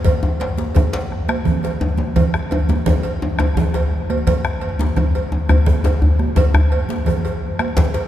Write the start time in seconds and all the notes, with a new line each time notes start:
0.05 bombo low, cowbell, djembe slap, high conga, low conga, djembe bass
0.23 djembe tone
0.40 cowbell, djembe slap
0.58 djembe slap, high conga
0.75 bombo rim, bombo low, cowbell, djembe tone, djembe bass, low conga
0.93 cowbell, djembe slap, djembe tone
1.12 bombo rim
1.29 bombo rim, cowbell, high conga
1.45 bombo low, djembe slap, low conga, djembe bass
1.63 bombo rim, cowbell, djembe slap, high conga, djembe tone
1.81 bombo rim, djembe slap, djembe tone
1.97 high conga, djembe tone
2.16 bombo rim, bombo low, cowbell, djembe slap, djembe tone, low conga, djembe bass
2.34 bombo rim, djembe slap, djembe tone
2.51 cowbell, djembe tone
2.69 djembe slap, high conga, djembe tone
2.86 bombo rim, bombo low, cowbell, djembe tone, low conga, djembe bass
3.03 cowbell, djembe tone
3.22 djembe tone
3.39 bombo rim, cowbell, high conga, djembe tone
3.55 bombo rim, bombo low, djembe tone, low conga, djembe bass
3.74 bombo rim, cowbell, djembe slap, djembe tone
4.10 bombo rim, cowbell, high conga
4.27 bombo rim, bombo low, cowbell, djembe slap, djembe bass, low conga
4.45 bombo rim, djembe slap, djembe tone
4.61 cowbell
4.79 djembe slap, high conga, djembe tone
4.96 bombo rim, bombo low, cowbell, low conga, djembe bass
5.15 cowbell, djembe tone
5.32 djembe tone
5.49 bombo rim, cowbell, high conga, djembe bass
5.66 bombo rim, bombo low, low conga, djembe bass
5.84 bombo rim, cowbell, djembe slap, djembe tone
6.02 djembe bass
6.19 bombo rim, high conga
6.36 bombo rim, bombo low, cowbell, djembe slap, djembe tone, low conga, djembe bass
6.54 bombo rim, djembe slap, djembe tone, djembe bass
6.72 cowbell
6.89 djembe slap, high conga
7.06 bombo rim, cowbell, low conga, djembe bass
7.25 cowbell, djembe tone
7.59 bombo rim, cowbell, high conga
7.77 bombo rim, bombo low, djembe slap, djembe bass, low conga
7.94 bombo rim, cowbell, djembe slap, djembe tone